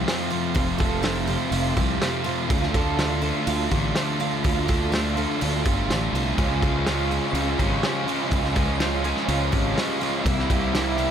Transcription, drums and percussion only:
0.08 snare loud
0.08 open hi-hat medium
0.31 open hi-hat medium
0.56 kick medium
0.56 open hi-hat medium
0.80 kick medium
0.80 open hi-hat medium
1.04 snare loud
1.04 open hi-hat medium
1.28 open hi-hat medium
1.52 open hi-hat medium
1.76 kick medium
1.76 open hi-hat soft
2.02 snare loud
2.02 open hi-hat medium
2.26 open hi-hat medium
2.50 kick medium
2.50 open hi-hat medium
2.63 snare soft
2.74 kick medium
2.74 open hi-hat soft
2.99 snare loud
2.99 open hi-hat medium
3.23 open hi-hat soft
3.47 open hi-hat medium
3.71 kick medium
3.71 open hi-hat medium
3.95 snare medium
3.95 open hi-hat medium
4.20 open hi-hat medium
4.45 kick medium
4.45 open hi-hat medium
4.69 kick medium
4.69 open hi-hat medium
4.94 snare loud
4.94 open hi-hat medium
5.18 open hi-hat medium
5.42 open hi-hat medium
5.65 kick medium
5.65 open hi-hat medium
5.90 snare loud
5.90 open hi-hat medium
6.15 open hi-hat medium
6.38 kick medium
6.38 open hi-hat medium
6.62 kick medium
6.62 open hi-hat soft
6.86 snare loud
6.86 open hi-hat medium
7.11 open hi-hat soft
7.34 open hi-hat medium
7.59 kick medium
7.59 open hi-hat soft
7.83 snare loud
7.83 open hi-hat medium
8.08 open hi-hat medium
8.31 kick medium
8.31 open hi-hat medium
8.44 snare soft
8.55 kick medium
8.55 open hi-hat soft
8.80 snare loud
8.80 open hi-hat medium
9.04 open hi-hat medium
9.17 snare soft
9.28 open hi-hat medium
9.53 kick medium
9.53 open hi-hat medium
9.77 snare medium
9.77 open hi-hat medium
10.03 open hi-hat medium
10.26 kick medium
10.26 open hi-hat medium
10.39 snare soft
10.50 kick medium
10.50 open hi-hat medium
10.75 snare loud
10.75 open hi-hat medium
10.99 open hi-hat soft

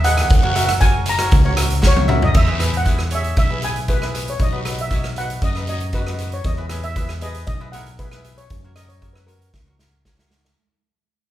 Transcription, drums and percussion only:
0.04 closed hi-hat medium
0.17 cross-stick medium
0.17 closed hi-hat medium
0.30 kick loud
0.30 closed hi-hat medium
0.30 long guiro medium
0.56 closed hi-hat medium
0.69 cross-stick medium
0.69 closed hi-hat medium
0.81 kick medium
0.81 closed hi-hat medium
0.81 short guiro medium
1.06 closed hi-hat medium
1.06 short guiro medium
1.19 cross-stick medium
1.19 closed hi-hat medium
1.31 kick loud
1.31 closed hi-hat medium
1.31 long guiro medium
1.57 cross-stick medium
1.57 closed hi-hat medium
1.57 short guiro medium
1.70 closed hi-hat medium
1.83 kick medium
1.83 snare medium
1.83 short guiro medium
1.97 high tom medium
2.09 mid tom loud
2.22 floor tom medium
2.34 kick loud
2.34 crash medium
2.34 long guiro medium
2.60 cross-stick medium
2.60 closed hi-hat medium
2.74 closed hi-hat medium
2.85 kick medium
2.85 closed hi-hat medium
2.85 short guiro medium
2.99 cross-stick medium
3.11 closed hi-hat medium
3.24 closed hi-hat medium
3.37 kick loud
3.37 closed hi-hat medium
3.37 short guiro medium
3.37 long guiro medium
3.62 closed hi-hat medium
3.76 closed hi-hat medium
3.88 kick medium
3.88 closed hi-hat medium
3.88 short guiro medium
4.02 cross-stick medium
4.14 closed hi-hat medium
4.14 short guiro medium
4.28 closed hi-hat medium
4.39 kick loud
4.39 closed hi-hat medium
4.39 long guiro medium
4.65 cross-stick medium
4.65 closed hi-hat medium
4.78 closed hi-hat medium
4.91 kick medium
4.91 closed hi-hat medium
4.91 short guiro medium
5.04 cross-stick medium
5.16 closed hi-hat medium
5.30 closed hi-hat medium
5.42 kick medium
5.42 closed hi-hat medium
5.42 short guiro medium
5.42 long guiro medium
5.55 cross-stick medium
5.67 closed hi-hat medium
5.80 closed hi-hat medium
5.93 kick medium
5.93 closed hi-hat medium
5.93 short guiro medium
6.07 cross-stick medium
6.19 closed hi-hat medium
6.19 short guiro medium
6.32 closed hi-hat medium
6.44 kick loud
6.44 closed hi-hat medium
6.70 cross-stick medium
6.70 closed hi-hat medium
6.83 closed hi-hat medium
6.96 kick medium
6.96 closed hi-hat medium
7.09 cross-stick medium
7.21 closed hi-hat medium
7.34 closed hi-hat medium
7.47 kick loud
7.47 closed hi-hat medium
7.73 closed hi-hat medium
7.86 closed hi-hat medium
7.99 kick medium
7.99 closed hi-hat medium
8.12 cross-stick medium
8.24 closed hi-hat medium
8.38 closed hi-hat medium
8.50 kick loud
8.50 closed hi-hat medium
8.76 cross-stick medium
8.76 closed hi-hat medium
8.90 closed hi-hat medium
9.02 kick medium
9.02 closed hi-hat medium
9.16 cross-stick medium
9.28 closed hi-hat medium
9.42 closed hi-hat medium
9.54 kick medium
9.54 snare soft
9.79 snare medium
10.05 kick medium
10.05 snare medium
10.19 snare medium
10.31 snare medium
10.45 snare medium

